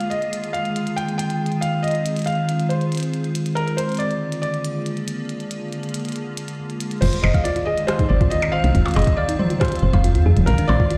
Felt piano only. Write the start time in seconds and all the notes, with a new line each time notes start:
Already playing: F5
0.10 D#5
0.53 F5
0.96 G5
1.18 G5
1.61 F5
1.83 D#5
2.26 F5
2.69 C5
3.55 A#4
3.77 C5
3.99 D5
4.42 D5
7.01 C5
7.22 D#5
7.44 D5
7.65 D#5
7.87 C5
8.09 D5
8.30 D#5
8.52 F5
8.95 D#5
9.17 D5
9.60 C5
10.46 A#4
10.68 D5